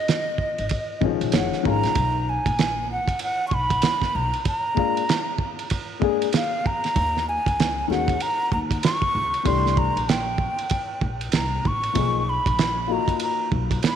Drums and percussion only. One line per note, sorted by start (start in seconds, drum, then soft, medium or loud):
0.08 snare loud
0.08 hi-hat pedal soft
0.08 ride medium
0.38 kick medium
0.58 ride medium
0.69 kick loud
0.69 ride medium
1.01 kick medium
1.21 ride medium
1.32 snare loud
1.32 hi-hat pedal medium
1.32 ride medium
1.53 snare soft
1.65 kick medium
1.83 snare soft
1.83 ride medium
1.95 kick loud
1.95 ride medium
2.46 kick medium
2.46 ride medium
2.59 snare loud
2.59 hi-hat pedal soft
2.59 ride medium
3.08 kick medium
3.08 ride medium
3.19 ride medium
3.51 kick medium
3.70 kick medium
3.70 ride medium
3.82 snare loud
3.82 hi-hat pedal medium
3.82 ride medium
4.02 kick medium
4.02 snare soft
4.33 ride medium
4.45 kick loud
4.45 ride medium
4.77 kick loud
4.97 ride medium
5.09 snare loud
5.09 hi-hat pedal medium
5.09 ride medium
5.38 kick medium
5.59 ride medium
5.70 kick medium
5.70 ride medium
6.02 kick medium
6.22 ride medium
6.33 snare loud
6.33 hi-hat pedal medium
6.33 ride medium
6.66 kick medium
6.84 snare soft
6.84 ride medium
6.96 kick loud
6.96 ride medium
7.17 snare soft
7.46 kick loud
7.46 ride medium
7.60 snare loud
7.60 hi-hat pedal soft
7.60 ride medium
7.91 snare soft
8.08 kick medium
8.08 ride medium
8.20 ride medium
8.52 kick medium
8.71 kick loud
8.71 ride medium
8.83 snare loud
8.83 hi-hat pedal medium
8.83 ride medium
9.02 kick loud
9.34 ride medium
9.46 kick loud
9.46 ride medium
9.66 snare soft
9.77 kick loud
9.97 ride medium
10.09 snare loud
10.09 hi-hat pedal soft
10.09 ride medium
10.38 kick medium
10.59 ride medium
10.70 kick loud
10.70 ride medium
11.01 kick medium
11.21 ride medium
11.32 snare loud
11.32 hi-hat pedal medium
11.32 ride medium
11.65 kick medium
11.83 ride medium
11.95 kick loud
11.95 ride medium
12.46 kick medium
12.46 ride medium
12.59 snare loud
12.59 hi-hat pedal soft
12.59 ride medium
13.08 kick medium
13.08 ride medium
13.20 ride medium
13.52 kick medium
13.71 kick loud
13.71 ride medium
13.82 snare loud
13.82 hi-hat pedal medium
13.82 ride medium